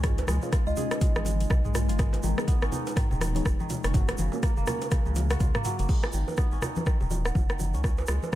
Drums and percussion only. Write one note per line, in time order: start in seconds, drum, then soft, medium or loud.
0.03 kick loud
0.03 cross-stick medium
0.03 closed hi-hat medium
0.03 mid tom medium
0.03 low bongo medium
0.03 high conga medium
0.03 shaker medium
0.18 closed hi-hat soft
0.18 high bongo loud
0.18 muted conga medium
0.18 shaker soft
0.27 cross-stick medium
0.27 low bongo loud
0.27 high conga loud
0.27 shaker medium
0.42 high bongo medium
0.42 shaker soft
0.51 kick loud
0.51 cross-stick medium
0.51 closed hi-hat medium
0.51 low bongo medium
0.51 muted conga soft
0.51 shaker medium
0.67 shaker soft
0.76 closed hi-hat soft
0.76 low bongo medium
0.76 muted conga medium
0.76 low conga medium
0.76 shaker medium
0.91 cross-stick medium
0.91 closed hi-hat soft
0.91 high bongo medium
0.91 shaker soft
1.01 kick loud
1.01 closed hi-hat medium
1.01 low bongo medium
1.01 muted conga soft
1.01 low conga medium
1.01 shaker soft
1.15 cross-stick medium
1.15 high conga medium
1.15 shaker soft
1.25 closed hi-hat medium
1.25 low bongo medium
1.25 high conga loud
1.25 shaker medium
1.40 closed hi-hat soft
1.40 muted conga medium
1.40 shaker soft
1.50 kick loud
1.50 cross-stick medium
1.50 low bongo medium
1.50 high conga medium
1.50 low conga loud
1.50 shaker soft
1.65 mid tom medium
1.65 muted conga soft
1.65 shaker soft
1.75 cross-stick medium
1.75 closed hi-hat soft
1.75 mid tom medium
1.75 low bongo loud
1.75 shaker medium
1.89 closed hi-hat soft
1.89 muted conga soft
1.89 shaker soft
1.99 kick loud
1.99 cross-stick medium
1.99 closed hi-hat medium
1.99 mid tom medium
1.99 low bongo medium
1.99 high conga medium
1.99 low conga medium
1.99 shaker soft
2.13 closed hi-hat soft
2.13 high bongo loud
2.13 muted conga medium
2.13 shaker soft
2.23 low bongo medium
2.23 high conga loud
2.23 shaker medium
2.38 cross-stick loud
2.38 high bongo medium
2.38 shaker soft
2.47 kick loud
2.47 closed hi-hat medium
2.47 low bongo medium
2.47 muted conga soft
2.47 shaker medium
2.62 cross-stick medium
2.62 shaker soft
2.71 closed hi-hat soft
2.71 low bongo medium
2.71 muted conga soft
2.71 low conga medium
2.71 shaker medium
2.87 closed hi-hat soft
2.87 high bongo medium
2.87 shaker soft
2.96 kick loud
2.96 cross-stick medium
2.96 closed hi-hat medium
2.96 mid tom medium
2.96 low bongo medium
2.96 muted conga soft
2.96 shaker soft
3.11 low conga loud
3.11 shaker soft
3.21 cross-stick medium
3.21 closed hi-hat medium
3.21 low bongo loud
3.21 high conga medium
3.21 shaker medium
3.35 closed hi-hat soft
3.35 muted conga medium
3.35 high conga loud
3.35 shaker soft
3.45 kick loud
3.45 cross-stick medium
3.45 low bongo medium
3.45 shaker medium
3.60 muted conga soft
3.60 high conga loud
3.60 shaker soft
3.70 closed hi-hat medium
3.70 low bongo medium
3.70 low conga medium
3.70 shaker medium
3.84 cross-stick medium
3.84 closed hi-hat soft
3.84 muted conga soft
3.84 shaker soft
3.94 kick loud
3.94 closed hi-hat medium
3.94 mid tom medium
3.94 low bongo loud
3.94 high conga medium
3.94 low conga medium
3.94 shaker soft
4.08 cross-stick medium
4.08 closed hi-hat soft
4.08 high bongo loud
4.08 muted conga medium
4.08 shaker soft
4.18 closed hi-hat soft
4.18 low bongo medium
4.18 high conga loud
4.18 shaker loud
4.32 high bongo medium
4.32 shaker soft
4.43 kick loud
4.43 cross-stick medium
4.43 closed hi-hat medium
4.43 low bongo medium
4.43 muted conga soft
4.43 shaker soft
4.57 shaker soft
4.67 cross-stick medium
4.67 closed hi-hat soft
4.67 low bongo medium
4.67 muted conga soft
4.67 low conga medium
4.67 shaker medium
4.82 closed hi-hat soft
4.82 high bongo medium
4.82 shaker soft
4.91 kick loud
4.91 cross-stick medium
4.91 closed hi-hat medium
4.91 low bongo medium
4.91 muted conga soft
4.91 low conga loud
4.91 shaker medium
5.06 high conga medium
5.06 shaker soft
5.15 closed hi-hat medium
5.15 low bongo loud
5.15 high conga medium
5.15 shaker loud
5.30 cross-stick medium
5.30 closed hi-hat soft
5.30 muted conga soft
5.30 shaker soft
5.40 kick loud
5.40 closed hi-hat soft
5.40 low bongo medium
5.40 high conga medium
5.40 low conga loud
5.40 shaker soft
5.54 cross-stick medium
5.54 mid tom medium
5.54 muted conga soft
5.54 shaker soft
5.64 closed hi-hat medium
5.64 mid tom medium
5.64 low bongo medium
5.64 shaker medium
5.79 closed hi-hat soft
5.79 muted conga medium
5.79 shaker soft
5.88 kick loud
5.88 crash loud
5.88 low bongo medium
5.88 low conga medium
5.88 shaker medium
6.03 cross-stick medium
6.03 high bongo loud
6.03 shaker soft
6.13 low bongo medium
6.13 muted conga medium
6.13 shaker medium
6.28 high bongo medium
6.28 high conga medium
6.28 shaker soft
6.37 kick loud
6.37 cross-stick medium
6.37 low bongo medium
6.37 muted conga soft
6.37 shaker medium
6.52 shaker soft
6.62 cross-stick medium
6.62 low bongo loud
6.62 muted conga soft
6.62 low conga medium
6.62 shaker medium
6.76 high bongo medium
6.76 high conga loud
6.76 shaker soft
6.86 kick loud
6.86 cross-stick medium
6.86 low bongo medium
6.86 shaker soft
7.00 muted conga soft
7.00 low conga loud
7.00 shaker soft
7.11 low bongo medium
7.11 high conga loud
7.11 shaker medium
7.25 cross-stick medium
7.25 muted conga medium
7.25 shaker soft
7.35 kick loud
7.35 low bongo loud
7.35 high conga loud
7.35 shaker soft
7.49 cross-stick medium
7.49 muted conga soft
7.49 shaker soft
7.59 low bongo medium
7.59 high conga medium
7.59 low conga medium
7.59 shaker medium
7.74 muted conga medium
7.74 shaker soft
7.84 kick loud
7.84 cross-stick medium
7.84 low bongo medium
7.84 shaker soft
7.97 high bongo loud
7.97 shaker soft
8.07 cross-stick medium
8.07 low bongo medium
8.07 muted conga soft
8.07 shaker loud
8.23 high bongo medium
8.23 high conga medium
8.23 shaker soft